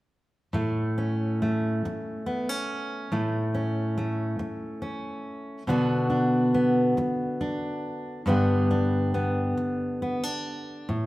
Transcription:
0.53 A2 A3
0.98 C#4
1.42 A3
1.85 muted steel-string acoustic guitar stroke
2.26 B3
2.49 C#4
3.12 A2 A3
3.54 C#4
3.98 A3
4.39 muted steel-string acoustic guitar stroke
4.82 C#4
5.67 B2 D3 B3 D4 F#4
6.10 D4
6.54 B3
6.97 muted steel-string acoustic guitar stroke
7.41 D4
8.26 G2 D3 B3 D4 G4
8.71 D4
9.14 B3
9.57 muted steel-string acoustic guitar stroke
10.02 B3
10.23 D4
10.89 A2

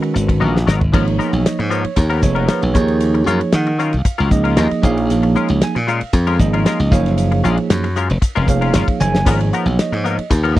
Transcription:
Already playing: D#3 G#3 C#4 F#4 B4
0.02 muted clean electric guitar stroke, ride
0.14 G#1, muted clean electric guitar stroke, hi-hat pedal
0.28 muted clean electric guitar stroke, kick, ride
0.40 A#1 F#3 B3 D#4 A#4, high tom
0.57 snare
0.66 G#1 F#3 B3 D#4 A#4, snare, hi-hat pedal
0.81 muted clean electric guitar stroke, floor tom
0.92 G#1 F3 A#3 B3 D#4 G#4 A#4 C#5, kick, crash
1.07 muted clean electric guitar stroke, ride
1.19 F3 B3 D#4 G#4 A#4, hi-hat pedal
1.32 B1, muted clean electric guitar stroke, ride
1.46 D#5, snare, hi-hat pedal, ride
1.59 G#2, muted clean electric guitar stroke, ride
1.70 F3 B3 D#4 A#4 C#5, hi-hat pedal
1.84 muted clean electric guitar stroke, muted slap bass stroke, ride
1.96 D#2, muted clean electric guitar stroke, kick, hi-hat pedal, ride
2.10 F3 B3 D#4 A#4, ride
2.22 F1 F3 A#3 D#4 G#4 C#5, muted clean electric guitar stroke, kick, hi-hat pedal
2.35 B3 D#4 A#4, ride
2.48 F3 B3 D#4 A#4 B4, snare, hi-hat pedal, ride
2.62 B1, muted clean electric guitar stroke, ride
2.74 D#2 F3 A#3 D#4 G#4 C#5, muted clean electric guitar stroke, kick, hi-hat pedal
2.88 ride
3.00 hi-hat pedal, ride
3.14 muted clean electric guitar stroke, ride
3.26 F#2 F#3 C#4 F4 A#4 C#5, hi-hat pedal
3.41 muted clean electric guitar stroke, ride
3.52 D#3 F#5, snare, hi-hat pedal, ride
3.67 muted clean electric guitar stroke, ride
3.79 F#3 C#4 F4 A#4 F5, snare, hi-hat pedal
3.93 C#2, muted clean electric guitar stroke, ride
4.05 muted clean electric guitar stroke, kick, hi-hat pedal, ride
4.18 C#2 F#3 C#4 F4 A#4, ride
4.30 F3 A#3 D#4 G#4 D#5, muted clean electric guitar stroke, kick, hi-hat pedal
4.44 C#4 F4 A#4, ride
4.56 D#2 F#3 C#4 F4 A#4 D#5, snare, hi-hat pedal, ride
4.71 muted clean electric guitar stroke, muted slap bass stroke, snare, ride
4.82 A#1 F3 A#3 D#4 G#4 C#5 F5, muted clean electric guitar stroke, kick, hi-hat pedal
4.97 ride
5.10 A#1, hi-hat pedal, ride
5.23 muted clean electric guitar stroke, ride
5.35 G#3 C#4 F4 A#4 C#5, hi-hat pedal
5.48 C#2, muted clean electric guitar stroke, ride
5.61 G#5, snare, hi-hat pedal, ride
5.75 A#2, muted clean electric guitar stroke, snare, ride
5.87 G#3 C#4 F4 A#4 F5, snare, hi-hat pedal
6.01 muted clean electric guitar stroke, muted slap bass stroke, ride
6.13 F2, muted clean electric guitar stroke, kick, hi-hat pedal, ride
6.27 G#3 C#4 F4 A#4, ride
6.39 G#1 F3 A#3 D#4 G#4 D#5, muted clean electric guitar stroke, kick, hi-hat pedal
6.53 C#4 F4 A#4, ride
6.65 G#3 C#4 F4 A#4 D#5, snare, hi-hat pedal, ride
6.80 C#2, muted clean electric guitar stroke, snare, ride
6.91 F#1 F3 A#3 D#4 G#4 C#5 F5, muted clean electric guitar stroke, kick, snare, hi-hat pedal
7.06 snare, ride
7.18 hi-hat pedal, ride
7.32 muted clean electric guitar stroke, ride
7.44 A#1 G#3 C#4 F4 A#4, hi-hat pedal
7.58 ride
7.70 F#2, snare, hi-hat pedal, ride
7.84 muted clean electric guitar stroke, snare, ride
7.96 G#3 C#4 F4 A#4, hi-hat pedal
8.09 F1, muted clean electric guitar stroke, ride
8.22 muted clean electric guitar stroke, kick, hi-hat pedal, ride
8.35 F1 G#3 C#4 F4 A#4, ride
8.47 F3 A#3 D#4 G#4 C#5 F5, muted clean electric guitar stroke, kick, hi-hat pedal
8.61 C#4 F4 A#4, ride
8.74 F#1 G#3 C#4 F4 A#4, snare, hi-hat pedal, ride
8.88 muted clean electric guitar stroke, kick, ride
9.00 F#1 G#5, muted clean electric guitar stroke, hi-hat pedal, high tom
9.15 snare
9.25 G#1 F3 A#3 B3 D#4 G#4 A#4 C#5, kick, hi-hat pedal, ride, splash
9.41 muted clean electric guitar stroke, ride
9.53 F3 B3 D#4 A#4 F#5, hi-hat pedal
9.66 B1, muted clean electric guitar stroke, ride
9.79 D#5, snare, hi-hat pedal, ride
9.92 G#2, muted clean electric guitar stroke, ride
10.04 F3 B3 D#4 A#4, snare, hi-hat pedal
10.18 muted clean electric guitar stroke, muted slap bass stroke, ride
10.30 D#2, muted clean electric guitar stroke, kick, hi-hat pedal, ride
10.44 F3 B3 D#4 A#4, ride
10.55 F3 A#3 D#4, muted clean electric guitar stroke

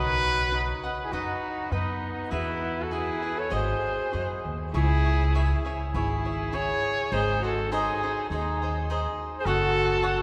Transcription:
Already playing: B1 D#4 F#4 B4 D#5 F#5
0.52 D#4 B4 D#5 F#5
0.83 B4 D#5 F#5
1.04 E4 G#4
1.12 F#2 D#4 F#4 B4 D#5 F#5
1.71 F#2 B3 D#4 B4 D#5 F#5
2.31 E2 B3 E4 F#4 G#4 B4 E5
2.81 F#4 A4
2.91 E4 F#4 G#4 B4 E5
3.22 G#4 B4 E5
3.37 A4 C#5
3.50 G#1 F#4 G#4 C5 D#5
3.55 C5
4.11 F#2 F#4 G#4 C5 D#5
4.45 D#2
4.74 C#2 E4 G#4 C#5 E5
5.04 G#4 C#5 E5
5.35 E4 G#4 C#5 E5
5.65 G#4 C#5 E5
5.94 G#1 E4 G#4 C#5 E5
6.25 G#4 C#5 E5
6.52 E4 G#4 C#5 E5
7.12 G#1 D#4 G#4 C5 D#5
7.42 F#4 G#4 A4 C5 D#5
7.71 D#4 G#4 C5 D#5
8.03 G#4 C5 D#5
8.30 D#2 D#4 G#4 C5 D#5
8.62 G#4 C5 D#5
8.90 D#4 G#4 C5 D#5
9.39 G#4 C5
9.45 F#1 F#4 A4 C#5 F#5
9.76 A4 C#5 F#5
10.02 F#4 A4 C#5 F#5

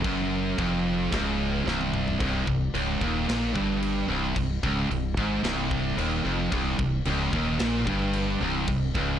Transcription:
0.04 F#1 F#2, kick, china
0.58 F1 F2, kick, china
1.12 C#1 C#2, kick, snare, china
1.65 C1 C2, snare
1.81 high tom
1.94 mid tom
2.08 floor tom
2.20 C1 C2, kick, crash
2.47 C1 C2, kick
2.73 C#1 C#2, crash
3.01 D#1 D#2, kick
3.28 A#1 A#2, snare, crash
3.55 G1 G2, kick
3.82 crash
4.08 C1 C2
4.36 C1 C2, kick, crash
4.63 C#1 C#2, kick
4.89 C1 C2, crash
5.17 G#1 G#2, kick
5.43 C1 C2, snare, crash
5.71 kick
5.97 D#1 D#2, crash
6.25 F1 F2
6.51 C1 C2, kick, crash
6.79 C1 C2, kick
7.05 C#1 C#2, crash
7.33 D#1 D#2, kick
7.59 A#1 A#2, snare, crash
7.87 G1 G2, kick
8.13 crash
8.40 C1 C2
8.67 C1 C2, kick, crash
8.95 C#1 C#2, kick

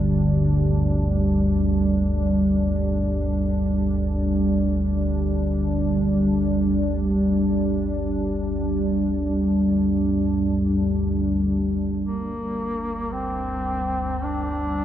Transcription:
Already playing: G1 D2 G3 D4 A5
12.00 D2 G3 A#3
12.04 G1 G3
13.12 C4
13.81 A5
14.14 D5
14.24 D4

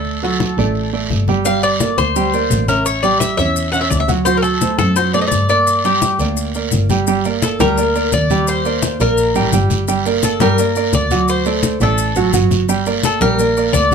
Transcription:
Already playing: D2 A3 A4 D5
0.05 high conga, long guiro
0.23 F#3 F#4 A4 F#5, high conga
0.40 high conga, short guiro
0.58 A1 A3 A4 D5, short guiro
0.75 high conga, long guiro
0.93 A3 A4 D5, high conga
1.10 G1, high conga, short guiro
1.28 G3 G4 G5, high conga, short guiro
1.45 G3 G4 F5 G5, high conga, long guiro, maracas
1.63 D5, high conga, maracas
1.80 A#3 A#4 D5, high conga, short guiro, maracas
1.98 D2 C5, high conga, short guiro, maracas
2.16 G3 G4 G5, high conga, long guiro, maracas
2.33 A#3 A#4 D5, high conga, maracas
2.51 A1, high conga, short guiro, maracas
2.68 C#4 A#4 C#5 E5, high conga, short guiro, maracas
2.86 C#5, high conga, long guiro, maracas
3.03 G3 G4 D5 G5, high conga, maracas
3.20 E5, high conga, short guiro, maracas
3.37 E2 C#4 C#5 E5, short guiro, maracas
3.56 high conga, long guiro, maracas
3.72 C#4 C#5 E5 F#5, high conga, maracas
3.81 E5
3.90 D2 D5, high conga, short guiro, maracas
4.00 E5
4.08 F#3 F#4 F#5, high conga, short guiro, maracas
4.25 F#3 F#4 C5 F#5, high conga, long guiro, maracas
4.37 A#4
4.42 A4, high conga, maracas
4.61 A3 A4 C5, high conga, short guiro, maracas
4.79 F#2 A4, high conga, short guiro, maracas
4.96 F#3 F#4 C5 F#5, high conga, long guiro, maracas
5.14 A3 A4 C5 D5, high conga, maracas
5.21 D#5
5.27 D5
5.32 G2, high conga, short guiro, maracas
5.49 A#3 A#4 D5, short guiro, maracas
5.67 high conga, long guiro, maracas
5.84 G3 G4 G5, high conga, maracas
6.02 high conga, short guiro, maracas
6.19 D2 A#3 A#4 D5, short guiro, maracas
6.37 high conga, long guiro, maracas
6.54 A#3 A#4 D5, high conga, maracas
6.72 G1, high conga, short guiro, maracas
6.89 G3 G4 G5, high conga, short guiro, maracas
7.07 G3 G4 G5, high conga, long guiro, maracas
7.25 A#3 A#4 D5, high conga, maracas
7.42 A4, high conga, short guiro, maracas
7.60 D2 G3 G4 A#4 G5, high conga, short guiro, maracas
7.77 A#3 A#4 D5, high conga, long guiro, maracas
7.95 A#3 A#4 D5, high conga, maracas
8.12 D#2 D5, high conga, short guiro, maracas
8.30 G3 G4 G5, high conga, short guiro, maracas
8.47 C5, high conga, long guiro, maracas
8.65 A#3 A#4 D5, high conga, maracas
8.82 high conga, short guiro, maracas
9.00 A#1 A#3 A#4 D5, short guiro, maracas
9.18 high conga, long guiro, maracas
9.35 A1 G3 G4 G5, high conga, maracas
9.53 G1 G3 G4 G5, high conga, short guiro, maracas
9.70 high conga, short guiro, maracas
9.88 G3 G4 G5, high conga, long guiro, maracas
10.05 A#3 A#4 D5, high conga, maracas
10.23 A4, high conga, short guiro, maracas
10.40 G2 G3 G4 A#4 G5, high conga, short guiro, maracas
10.58 A#3 A#4 D5, high conga, long guiro, maracas
10.75 A#3 A#4 D5, high conga, maracas
10.93 D2 D5, high conga, short guiro, maracas
11.11 F#3 F#4 F#5, high conga, short guiro, maracas
11.28 C5, high conga, long guiro, maracas
11.45 A3 A4 D5, high conga, maracas
11.63 high conga, short guiro, maracas
11.80 A1 A3 A4 D5, short guiro, maracas
11.98 high conga, long guiro, maracas
12.16 A1 F#3 F#4 F#5, high conga, maracas
12.33 G1 F#3 F#4 F#5, high conga, short guiro, maracas
12.51 high conga, short guiro, maracas
12.68 G3 G4 G5, high conga, long guiro, maracas
12.86 A#3 A#4 D5, high conga, maracas
13.03 A4, high conga, short guiro, maracas
13.21 A#1 G3 G4 A#4 G5, high conga, short guiro, maracas
13.39 A#3 A#4 D5, high conga, long guiro, maracas
13.56 A#3 A#4 D5, high conga, maracas
13.73 D2 D5, high conga, short guiro, maracas
13.91 high conga

